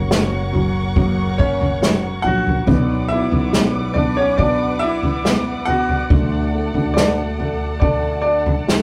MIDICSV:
0, 0, Header, 1, 7, 480
1, 0, Start_track
1, 0, Key_signature, 2, "minor"
1, 0, Tempo, 857143
1, 1498, Time_signature, 4, 2, 24, 8
1, 4939, End_track
2, 0, Start_track
2, 0, Title_t, "String section"
2, 0, Program_c, 0, 48
2, 0, Note_on_c, 0, 70, 68
2, 0, Note_on_c, 0, 73, 60
2, 0, Note_on_c, 0, 78, 64
2, 0, Note_on_c, 0, 85, 74
2, 1480, Note_off_c, 0, 70, 0
2, 1480, Note_off_c, 0, 78, 0
2, 1480, Note_off_c, 0, 85, 0
2, 1482, Note_off_c, 0, 73, 0
2, 1506, Note_on_c, 0, 74, 66
2, 1507, Note_on_c, 0, 71, 69
2, 1507, Note_on_c, 0, 78, 65
2, 1510, Note_on_c, 0, 86, 75
2, 3404, Note_off_c, 0, 71, 0
2, 3405, Note_off_c, 0, 86, 0
2, 3424, Note_on_c, 0, 69, 65
2, 3425, Note_on_c, 0, 81, 76
2, 4939, Note_off_c, 0, 69, 0
2, 4939, Note_off_c, 0, 74, 0
2, 4939, Note_off_c, 0, 78, 0
2, 4939, Note_off_c, 0, 81, 0
2, 4939, End_track
3, 0, Start_track
3, 0, Title_t, "Grand piano"
3, 0, Program_c, 1, 0
3, 0, Note_on_c, 1, 61, 73
3, 0, Note_on_c, 1, 73, 87
3, 756, Note_off_c, 1, 73, 0
3, 764, Note_off_c, 1, 61, 0
3, 774, Note_on_c, 1, 73, 92
3, 795, Note_on_c, 1, 61, 68
3, 1244, Note_off_c, 1, 61, 0
3, 1245, Note_on_c, 1, 78, 102
3, 1271, Note_off_c, 1, 73, 0
3, 1271, Note_on_c, 1, 66, 77
3, 1722, Note_off_c, 1, 66, 0
3, 1728, Note_on_c, 1, 76, 104
3, 1746, Note_off_c, 1, 78, 0
3, 1750, Note_on_c, 1, 64, 71
3, 2201, Note_off_c, 1, 64, 0
3, 2205, Note_on_c, 1, 74, 88
3, 2226, Note_on_c, 1, 62, 62
3, 2227, Note_off_c, 1, 76, 0
3, 2334, Note_off_c, 1, 62, 0
3, 2334, Note_on_c, 1, 73, 86
3, 2335, Note_off_c, 1, 74, 0
3, 2358, Note_on_c, 1, 61, 66
3, 2447, Note_off_c, 1, 73, 0
3, 2451, Note_on_c, 1, 74, 90
3, 2461, Note_off_c, 1, 61, 0
3, 2470, Note_on_c, 1, 62, 70
3, 2685, Note_on_c, 1, 76, 106
3, 2688, Note_off_c, 1, 62, 0
3, 2702, Note_off_c, 1, 74, 0
3, 2711, Note_on_c, 1, 64, 75
3, 3162, Note_off_c, 1, 64, 0
3, 3167, Note_on_c, 1, 78, 106
3, 3186, Note_off_c, 1, 76, 0
3, 3191, Note_on_c, 1, 66, 79
3, 3882, Note_off_c, 1, 66, 0
3, 3885, Note_on_c, 1, 74, 87
3, 3905, Note_on_c, 1, 62, 66
3, 3914, Note_off_c, 1, 78, 0
3, 4359, Note_off_c, 1, 62, 0
3, 4359, Note_off_c, 1, 74, 0
3, 4367, Note_on_c, 1, 74, 80
3, 4389, Note_on_c, 1, 62, 67
3, 4593, Note_off_c, 1, 74, 0
3, 4601, Note_on_c, 1, 74, 83
3, 4607, Note_off_c, 1, 62, 0
3, 4629, Note_on_c, 1, 62, 65
3, 4939, Note_off_c, 1, 62, 0
3, 4939, Note_off_c, 1, 74, 0
3, 4939, End_track
4, 0, Start_track
4, 0, Title_t, "Steel-string acoustic guitar"
4, 0, Program_c, 2, 25
4, 0, Note_on_c, 2, 42, 76
4, 0, Note_on_c, 2, 49, 75
4, 0, Note_on_c, 2, 61, 75
4, 0, Note_on_c, 2, 66, 76
4, 54, Note_on_c, 2, 54, 56
4, 57, Note_off_c, 2, 42, 0
4, 58, Note_off_c, 2, 49, 0
4, 59, Note_off_c, 2, 61, 0
4, 60, Note_on_c, 2, 58, 59
4, 66, Note_on_c, 2, 61, 61
4, 68, Note_off_c, 2, 66, 0
4, 70, Note_on_c, 2, 66, 67
4, 289, Note_off_c, 2, 66, 0
4, 295, Note_off_c, 2, 61, 0
4, 296, Note_off_c, 2, 54, 0
4, 296, Note_on_c, 2, 66, 52
4, 299, Note_off_c, 2, 58, 0
4, 302, Note_on_c, 2, 61, 48
4, 306, Note_on_c, 2, 58, 48
4, 311, Note_on_c, 2, 54, 39
4, 536, Note_off_c, 2, 54, 0
4, 537, Note_off_c, 2, 66, 0
4, 538, Note_on_c, 2, 42, 85
4, 539, Note_off_c, 2, 58, 0
4, 540, Note_off_c, 2, 61, 0
4, 541, Note_on_c, 2, 49, 77
4, 543, Note_on_c, 2, 54, 91
4, 545, Note_on_c, 2, 58, 84
4, 546, Note_on_c, 2, 61, 90
4, 548, Note_on_c, 2, 66, 100
4, 770, Note_off_c, 2, 66, 0
4, 777, Note_on_c, 2, 66, 50
4, 778, Note_off_c, 2, 42, 0
4, 778, Note_off_c, 2, 61, 0
4, 780, Note_off_c, 2, 49, 0
4, 780, Note_off_c, 2, 54, 0
4, 782, Note_off_c, 2, 58, 0
4, 784, Note_on_c, 2, 61, 50
4, 788, Note_on_c, 2, 58, 46
4, 794, Note_on_c, 2, 54, 45
4, 1253, Note_off_c, 2, 66, 0
4, 1255, Note_off_c, 2, 61, 0
4, 1255, Note_on_c, 2, 66, 49
4, 1260, Note_off_c, 2, 58, 0
4, 1261, Note_on_c, 2, 61, 48
4, 1266, Note_on_c, 2, 58, 42
4, 1269, Note_off_c, 2, 54, 0
4, 1271, Note_on_c, 2, 54, 40
4, 1494, Note_off_c, 2, 54, 0
4, 1497, Note_off_c, 2, 66, 0
4, 1497, Note_on_c, 2, 47, 74
4, 1500, Note_off_c, 2, 61, 0
4, 1501, Note_on_c, 2, 54, 75
4, 1502, Note_off_c, 2, 58, 0
4, 1505, Note_on_c, 2, 59, 78
4, 1507, Note_on_c, 2, 62, 88
4, 1509, Note_on_c, 2, 66, 78
4, 1971, Note_off_c, 2, 54, 0
4, 1974, Note_on_c, 2, 54, 61
4, 1975, Note_off_c, 2, 59, 0
4, 1978, Note_off_c, 2, 47, 0
4, 1981, Note_on_c, 2, 59, 61
4, 1983, Note_off_c, 2, 62, 0
4, 1985, Note_on_c, 2, 62, 62
4, 1988, Note_off_c, 2, 66, 0
4, 1991, Note_on_c, 2, 66, 67
4, 2455, Note_off_c, 2, 59, 0
4, 2455, Note_on_c, 2, 47, 77
4, 2456, Note_off_c, 2, 54, 0
4, 2458, Note_on_c, 2, 54, 78
4, 2461, Note_on_c, 2, 59, 82
4, 2462, Note_off_c, 2, 62, 0
4, 2463, Note_off_c, 2, 66, 0
4, 2464, Note_on_c, 2, 62, 83
4, 2465, Note_on_c, 2, 66, 80
4, 2690, Note_off_c, 2, 66, 0
4, 2696, Note_off_c, 2, 47, 0
4, 2696, Note_on_c, 2, 66, 54
4, 2698, Note_off_c, 2, 54, 0
4, 2698, Note_off_c, 2, 62, 0
4, 2700, Note_off_c, 2, 59, 0
4, 2704, Note_on_c, 2, 62, 48
4, 2711, Note_on_c, 2, 59, 43
4, 3171, Note_off_c, 2, 66, 0
4, 3174, Note_on_c, 2, 66, 54
4, 3181, Note_off_c, 2, 62, 0
4, 3183, Note_off_c, 2, 59, 0
4, 3183, Note_on_c, 2, 62, 43
4, 3190, Note_on_c, 2, 59, 42
4, 3416, Note_off_c, 2, 66, 0
4, 3416, Note_on_c, 2, 50, 67
4, 3417, Note_off_c, 2, 59, 0
4, 3417, Note_off_c, 2, 62, 0
4, 3419, Note_on_c, 2, 57, 80
4, 3424, Note_on_c, 2, 62, 88
4, 3428, Note_on_c, 2, 66, 81
4, 3891, Note_off_c, 2, 50, 0
4, 3892, Note_off_c, 2, 57, 0
4, 3901, Note_off_c, 2, 62, 0
4, 3907, Note_off_c, 2, 66, 0
4, 3909, Note_on_c, 2, 66, 65
4, 4124, Note_off_c, 2, 66, 0
4, 4131, Note_on_c, 2, 66, 47
4, 4141, Note_on_c, 2, 62, 41
4, 4147, Note_on_c, 2, 57, 38
4, 4367, Note_off_c, 2, 57, 0
4, 4370, Note_on_c, 2, 50, 69
4, 4371, Note_off_c, 2, 62, 0
4, 4374, Note_off_c, 2, 66, 0
4, 4374, Note_on_c, 2, 57, 77
4, 4378, Note_on_c, 2, 62, 76
4, 4381, Note_on_c, 2, 66, 78
4, 4603, Note_off_c, 2, 66, 0
4, 4610, Note_on_c, 2, 66, 51
4, 4611, Note_off_c, 2, 62, 0
4, 4614, Note_off_c, 2, 50, 0
4, 4616, Note_off_c, 2, 57, 0
4, 4618, Note_on_c, 2, 62, 43
4, 4626, Note_on_c, 2, 57, 42
4, 4939, Note_off_c, 2, 57, 0
4, 4939, Note_off_c, 2, 62, 0
4, 4939, Note_off_c, 2, 66, 0
4, 4939, End_track
5, 0, Start_track
5, 0, Title_t, "Upright piano"
5, 0, Program_c, 3, 0
5, 0, Control_c, 3, 64, 127
5, 0, Note_on_c, 3, 54, 48
5, 55, Note_off_c, 3, 54, 0
5, 55, Note_on_c, 3, 54, 53
5, 285, Note_off_c, 3, 54, 0
5, 293, Note_on_c, 3, 54, 55
5, 531, Note_off_c, 3, 54, 0
5, 539, Note_on_c, 3, 54, 57
5, 1005, Note_off_c, 3, 54, 0
5, 1014, Note_on_c, 3, 54, 52
5, 1249, Note_off_c, 3, 54, 0
5, 1257, Note_on_c, 3, 54, 53
5, 1490, Note_off_c, 3, 54, 0
5, 1497, Note_on_c, 3, 59, 67
5, 1505, Control_c, 3, 64, 0
5, 1604, Control_c, 3, 64, 127
5, 1733, Note_off_c, 3, 59, 0
5, 1741, Note_on_c, 3, 59, 54
5, 1975, Note_off_c, 3, 59, 0
5, 1983, Note_on_c, 3, 59, 57
5, 2213, Note_off_c, 3, 59, 0
5, 2221, Note_on_c, 3, 59, 58
5, 2454, Note_off_c, 3, 59, 0
5, 2463, Note_on_c, 3, 59, 58
5, 2934, Note_off_c, 3, 59, 0
5, 2943, Note_on_c, 3, 59, 54
5, 3169, Note_off_c, 3, 59, 0
5, 3177, Note_on_c, 3, 59, 52
5, 3411, Note_off_c, 3, 59, 0
5, 3416, Note_on_c, 3, 50, 67
5, 3425, Control_c, 3, 64, 0
5, 3511, Control_c, 3, 64, 127
5, 3657, Note_on_c, 3, 57, 51
5, 3894, Note_off_c, 3, 50, 0
5, 3902, Note_on_c, 3, 50, 52
5, 4131, Note_off_c, 3, 57, 0
5, 4139, Note_on_c, 3, 57, 51
5, 4370, Note_off_c, 3, 50, 0
5, 4378, Note_on_c, 3, 50, 50
5, 4849, Note_off_c, 3, 57, 0
5, 4857, Note_on_c, 3, 57, 51
5, 4939, Note_off_c, 3, 50, 0
5, 4939, Note_off_c, 3, 57, 0
5, 4939, End_track
6, 0, Start_track
6, 0, Title_t, "Fretless electric bass"
6, 0, Program_c, 4, 35
6, 0, Note_on_c, 4, 30, 90
6, 1236, Note_off_c, 4, 30, 0
6, 1257, Note_on_c, 4, 34, 77
6, 1481, Note_off_c, 4, 34, 0
6, 1499, Note_on_c, 4, 35, 99
6, 1836, Note_off_c, 4, 35, 0
6, 1859, Note_on_c, 4, 35, 79
6, 3156, Note_off_c, 4, 35, 0
6, 3417, Note_on_c, 4, 38, 97
6, 3755, Note_off_c, 4, 38, 0
6, 3775, Note_on_c, 4, 38, 85
6, 4939, Note_off_c, 4, 38, 0
6, 4939, End_track
7, 0, Start_track
7, 0, Title_t, "Drums"
7, 61, Note_on_c, 9, 38, 101
7, 117, Note_off_c, 9, 38, 0
7, 299, Note_on_c, 9, 43, 65
7, 355, Note_off_c, 9, 43, 0
7, 538, Note_on_c, 9, 36, 87
7, 538, Note_on_c, 9, 43, 66
7, 594, Note_off_c, 9, 36, 0
7, 594, Note_off_c, 9, 43, 0
7, 781, Note_on_c, 9, 36, 85
7, 837, Note_off_c, 9, 36, 0
7, 900, Note_on_c, 9, 43, 69
7, 956, Note_off_c, 9, 43, 0
7, 1022, Note_on_c, 9, 38, 103
7, 1078, Note_off_c, 9, 38, 0
7, 1260, Note_on_c, 9, 43, 57
7, 1316, Note_off_c, 9, 43, 0
7, 1379, Note_on_c, 9, 43, 60
7, 1435, Note_off_c, 9, 43, 0
7, 1495, Note_on_c, 9, 43, 95
7, 1498, Note_on_c, 9, 36, 91
7, 1551, Note_off_c, 9, 43, 0
7, 1554, Note_off_c, 9, 36, 0
7, 1856, Note_on_c, 9, 43, 64
7, 1912, Note_off_c, 9, 43, 0
7, 1978, Note_on_c, 9, 38, 105
7, 2034, Note_off_c, 9, 38, 0
7, 2214, Note_on_c, 9, 43, 67
7, 2270, Note_off_c, 9, 43, 0
7, 2453, Note_on_c, 9, 43, 68
7, 2456, Note_on_c, 9, 36, 85
7, 2509, Note_off_c, 9, 43, 0
7, 2512, Note_off_c, 9, 36, 0
7, 2815, Note_on_c, 9, 43, 71
7, 2871, Note_off_c, 9, 43, 0
7, 2940, Note_on_c, 9, 38, 102
7, 2996, Note_off_c, 9, 38, 0
7, 3180, Note_on_c, 9, 43, 56
7, 3236, Note_off_c, 9, 43, 0
7, 3298, Note_on_c, 9, 43, 62
7, 3354, Note_off_c, 9, 43, 0
7, 3418, Note_on_c, 9, 36, 92
7, 3419, Note_on_c, 9, 43, 98
7, 3474, Note_off_c, 9, 36, 0
7, 3475, Note_off_c, 9, 43, 0
7, 3781, Note_on_c, 9, 43, 62
7, 3837, Note_off_c, 9, 43, 0
7, 3902, Note_on_c, 9, 38, 110
7, 3958, Note_off_c, 9, 38, 0
7, 4142, Note_on_c, 9, 43, 61
7, 4198, Note_off_c, 9, 43, 0
7, 4377, Note_on_c, 9, 36, 86
7, 4378, Note_on_c, 9, 43, 64
7, 4433, Note_off_c, 9, 36, 0
7, 4434, Note_off_c, 9, 43, 0
7, 4739, Note_on_c, 9, 43, 68
7, 4795, Note_off_c, 9, 43, 0
7, 4863, Note_on_c, 9, 38, 98
7, 4919, Note_off_c, 9, 38, 0
7, 4939, End_track
0, 0, End_of_file